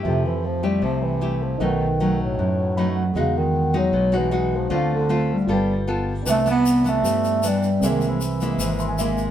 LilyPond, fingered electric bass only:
\new Staff \with { instrumentName = "Fingered electric bass" } { \clef bass \time 4/4 \key c \lydian \tempo 4 = 155 f,2 c,2 | b,,2 fis,2 | e,2 b,,2 | d,2 g,,2 |
c,2 g,2 | c,2 gis,,2 | }